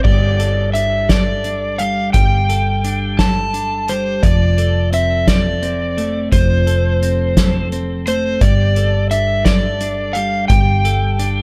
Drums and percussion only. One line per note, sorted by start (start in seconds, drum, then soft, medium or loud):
0.04 kick medium
0.04 crash medium
0.40 closed hi-hat soft
0.75 closed hi-hat soft
1.09 kick medium
1.09 snare medium
1.09 closed hi-hat medium
1.44 closed hi-hat soft
1.79 closed hi-hat soft
2.14 kick medium
2.14 closed hi-hat medium
2.49 closed hi-hat soft
2.84 closed hi-hat soft
3.19 kick medium
3.19 snare medium
3.19 closed hi-hat medium
3.54 closed hi-hat soft
3.88 closed hi-hat soft
4.23 kick medium
4.23 closed hi-hat medium
4.58 closed hi-hat medium
4.93 closed hi-hat medium
5.28 kick medium
5.28 snare medium
5.28 closed hi-hat medium
5.63 closed hi-hat soft
5.98 closed hi-hat soft
6.32 kick medium
6.32 closed hi-hat medium
6.67 closed hi-hat soft
7.02 closed hi-hat soft
7.37 kick medium
7.37 snare medium
7.37 closed hi-hat medium
7.72 closed hi-hat soft
8.07 closed hi-hat soft
8.41 kick medium
8.41 closed hi-hat medium
8.76 closed hi-hat medium
9.11 closed hi-hat soft
9.45 kick medium
9.45 snare medium
9.45 closed hi-hat medium
9.80 closed hi-hat soft
10.15 closed hi-hat soft
10.50 kick medium
10.50 closed hi-hat medium
10.85 closed hi-hat medium
11.19 closed hi-hat medium